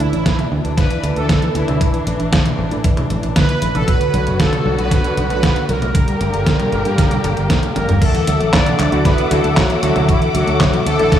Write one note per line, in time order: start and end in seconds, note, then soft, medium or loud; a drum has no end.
0.00 3.84 E3 medium
0.00 3.84 D4 medium
0.00 0.48 E4 loud
0.00 closed hi-hat medium
0.13 0.23 A1 medium
0.13 0.21 D4 medium
0.13 closed hi-hat soft
0.26 0.34 D3 medium
0.26 kick loud
0.26 snare loud
0.26 closed hi-hat medium
0.39 0.47 E3 loud
0.39 closed hi-hat soft
0.39 high tom medium
0.52 0.61 D2 medium
0.52 0.57 A3 medium
0.64 0.74 D2 medium
0.64 0.73 D4 medium
0.64 closed hi-hat soft
0.77 0.86 D3 medium
0.77 1.17 B4 loud
0.77 kick loud
0.77 snare medium
0.77 closed hi-hat medium
0.90 0.99 E3 loud
0.90 closed hi-hat soft
1.03 1.13 D2 medium
1.03 1.08 A3 medium
1.03 closed hi-hat medium
1.16 1.26 D2 medium
1.16 1.25 D4 medium
1.16 1.56 A4 loud
1.16 closed hi-hat soft
1.29 1.38 D3 medium
1.29 kick loud
1.29 snare loud
1.29 closed hi-hat medium
1.42 1.51 E3 loud
1.42 closed hi-hat soft
1.55 1.65 D2 medium
1.55 1.60 A3 medium
1.55 2.03 E4 medium
1.55 closed hi-hat medium
1.68 1.78 D2 medium
1.68 1.76 D4 medium
1.68 closed hi-hat soft
1.68 high tom medium
1.81 1.89 D3 medium
1.81 kick loud
1.81 closed hi-hat medium
1.94 2.02 E3 loud
1.94 closed hi-hat soft
2.07 2.17 A1 medium
2.07 2.12 A3 medium
2.07 closed hi-hat medium
2.20 2.30 A1 medium
2.20 2.28 D4 medium
2.20 closed hi-hat soft
2.33 2.41 D3 medium
2.33 kick loud
2.33 snare loud
2.33 closed hi-hat medium
2.46 2.54 E3 loud
2.46 closed hi-hat soft
2.46 high tom medium
2.59 2.68 A1 medium
2.59 2.64 A3 medium
2.71 2.81 A2 medium
2.71 2.80 D4 medium
2.71 closed hi-hat soft
2.84 2.93 D3 medium
2.84 kick loud
2.84 closed hi-hat medium
2.97 3.06 E3 loud
2.97 closed hi-hat soft
2.97 high tom medium
3.10 3.20 A1 medium
3.10 3.15 A3 medium
3.10 closed hi-hat medium
3.23 3.33 A1 medium
3.23 3.32 D4 medium
3.23 closed hi-hat soft
3.36 3.44 D3 medium
3.36 3.76 B4 loud
3.36 kick loud
3.36 snare loud
3.36 closed hi-hat medium
3.49 3.57 E3 loud
3.49 closed hi-hat soft
3.62 3.72 A1 medium
3.62 3.67 A3 medium
3.62 closed hi-hat medium
3.75 3.85 A1 medium
3.75 3.83 D4 medium
3.75 3.88 A4 loud
3.75 closed hi-hat soft
3.75 high tom medium
3.88 3.96 B2 medium
3.88 5.93 D3 medium
3.88 5.93 F#3 medium
3.88 5.93 B3 medium
3.88 5.93 F#4 medium
3.88 4.41 B4 loud
3.88 kick loud
3.88 closed hi-hat medium
4.01 4.09 D3 medium
4.01 closed hi-hat soft
4.14 4.24 B1 medium
4.14 4.19 F#3 medium
4.14 closed hi-hat medium
4.27 4.37 F#1 medium
4.27 4.35 A3 medium
4.27 closed hi-hat soft
4.40 4.48 B2 medium
4.40 4.80 A4 loud
4.40 kick loud
4.40 snare loud
4.40 closed hi-hat medium
4.52 4.61 D3 loud
4.52 closed hi-hat soft
4.52 high tom medium
4.66 4.75 B1 medium
4.66 4.71 F#3 medium
4.78 4.88 B1 medium
4.78 4.87 A3 medium
4.78 5.29 B4 loud
4.78 closed hi-hat soft
4.91 5.00 B2 medium
4.91 kick loud
4.91 snare medium
4.91 closed hi-hat medium
5.04 5.13 D3 loud
5.04 closed hi-hat soft
5.17 5.27 B1 medium
5.17 5.22 F#3 medium
5.17 closed hi-hat medium
5.30 5.40 B1 medium
5.30 5.39 A3 medium
5.30 5.70 B4 loud
5.30 closed hi-hat soft
5.43 5.51 B2 medium
5.43 kick loud
5.43 snare loud
5.43 closed hi-hat medium
5.56 5.64 D3 loud
5.56 closed hi-hat soft
5.69 5.79 B1 medium
5.69 5.74 F#3 medium
5.69 7.72 A#4 loud
5.69 closed hi-hat medium
5.82 5.92 B1 medium
5.82 5.90 A3 medium
5.82 closed hi-hat soft
5.82 high tom medium
5.95 6.03 D3 medium
5.95 8.00 D3 medium
5.95 8.00 G3 medium
5.95 8.00 A#3 medium
5.95 8.00 G4 medium
5.95 kick loud
5.95 closed hi-hat medium
6.08 6.16 G3 medium
6.08 closed hi-hat soft
6.21 6.30 G1 medium
6.21 6.26 A3 medium
6.21 closed hi-hat medium
6.34 6.43 G1 medium
6.34 6.42 A#3 medium
6.34 closed hi-hat soft
6.46 6.55 D3 medium
6.46 kick loud
6.46 snare loud
6.46 closed hi-hat loud
6.60 6.68 G3 loud
6.60 closed hi-hat soft
6.60 high tom medium
6.72 6.82 G1 medium
6.72 6.77 A3 medium
6.72 closed hi-hat soft
6.85 6.95 G2 medium
6.85 6.94 A#3 medium
6.85 closed hi-hat soft
6.98 7.07 D3 medium
6.98 kick loud
6.98 snare medium
6.98 closed hi-hat medium
7.11 7.20 G3 loud
7.11 closed hi-hat soft
7.11 high tom medium
7.24 7.34 G1 medium
7.24 7.29 A4 loud
7.24 closed hi-hat medium
7.24 high tom medium
7.37 7.47 G1 medium
7.37 7.49 G3 medium
7.37 closed hi-hat soft
7.50 7.58 A3 loud
7.50 kick loud
7.50 snare loud
7.50 closed hi-hat medium
7.50 high tom medium
7.63 7.75 A3 medium
7.63 closed hi-hat soft
7.63 high tom medium
7.76 7.86 G1 medium
7.76 8.00 A#3 medium
7.76 7.88 D4 medium
7.76 8.02 A#4 medium
7.76 closed hi-hat medium
7.76 mid tom medium
7.89 7.99 G1 medium
7.89 7.97 G3 loud
7.89 closed hi-hat soft
7.89 mid tom medium
8.02 8.10 D3 medium
8.02 8.50 A3 medium
8.02 8.55 A4 loud
8.02 11.20 A4 medium
8.02 11.20 E5 medium
8.02 11.20 F#5 medium
8.02 11.20 D6 medium
8.02 kick loud
8.02 closed hi-hat medium
8.02 crash loud
8.15 8.23 E3 loud
8.15 closed hi-hat soft
8.27 8.37 D2 medium
8.27 8.40 F#3 loud
8.27 closed hi-hat loud
8.40 8.50 A1 medium
8.40 8.49 A3 medium
8.40 closed hi-hat soft
8.53 8.62 D3 medium
8.53 9.02 D4 medium
8.53 9.07 D5 loud
8.53 kick loud
8.53 snare loud
8.53 clap loud
8.53 closed hi-hat medium
8.66 8.75 E3 loud
8.66 closed hi-hat soft
8.66 high tom medium
8.79 8.89 D2 medium
8.79 8.92 F#3 loud
8.79 clap medium
8.79 closed hi-hat medium
8.92 9.02 D2 medium
8.92 9.28 A3 medium
8.92 9.01 A3 medium
8.92 9.28 D4 medium
8.92 9.28 E4 medium
8.92 9.28 F#4 medium
8.92 closed hi-hat soft
9.05 9.13 D3 medium
9.05 9.30 B3 medium
9.05 9.32 B4 loud
9.05 kick loud
9.05 snare medium
9.05 closed hi-hat medium
9.18 9.26 E3 loud
9.18 closed hi-hat soft
9.31 9.41 D2 medium
9.31 9.43 F#3 loud
9.31 9.47 A3 loud
9.31 9.56 A3 medium
9.31 9.47 D4 medium
9.31 9.47 E4 medium
9.31 9.47 F#4 loud
9.31 9.58 A4 medium
9.31 closed hi-hat medium
9.44 9.54 D2 medium
9.44 9.52 A3 medium
9.44 closed hi-hat soft
9.57 9.65 D3 medium
9.57 9.81 F#3 medium
9.57 9.81 F#4 medium
9.57 kick loud
9.57 snare loud
9.57 clap loud
9.57 closed hi-hat medium
9.70 9.78 E3 loud
9.70 closed hi-hat soft
9.82 9.93 D2 medium
9.82 9.95 F#3 loud
9.82 10.07 F#3 medium
9.82 10.96 A3 medium
9.82 10.96 D4 medium
9.82 10.96 E4 medium
9.82 10.09 F#4 medium
9.82 10.96 F#4 loud
9.82 closed hi-hat loud
9.96 10.06 D2 medium
9.96 10.04 A3 medium
9.96 closed hi-hat soft
9.96 high tom medium
10.08 10.17 D3 medium
10.08 10.21 E3 medium
10.08 10.20 E4 medium
10.08 kick loud
10.08 closed hi-hat medium
10.21 10.30 E3 loud
10.21 closed hi-hat soft
10.34 10.44 D2 medium
10.34 10.47 F#3 loud
10.34 10.83 F#3 medium
10.34 10.83 F#4 medium
10.34 closed hi-hat medium
10.47 10.57 D2 medium
10.47 10.56 A3 medium
10.47 closed hi-hat soft
10.60 10.69 D3 medium
10.60 kick loud
10.60 snare loud
10.60 clap medium
10.60 closed hi-hat medium
10.73 10.82 E3 loud
10.73 closed hi-hat soft
10.73 high tom medium
10.86 10.96 D2 medium
10.86 10.98 F#3 loud
10.86 11.20 A3 medium
10.86 11.20 A4 loud
10.86 closed hi-hat medium
10.99 11.09 A1 medium
10.99 11.07 A3 medium
10.99 11.20 A3 medium
10.99 11.20 D4 medium
10.99 11.20 E4 medium
10.99 11.20 A4 loud
10.99 closed hi-hat soft
11.12 11.20 D3 medium
11.12 kick loud
11.12 snare medium
11.12 closed hi-hat medium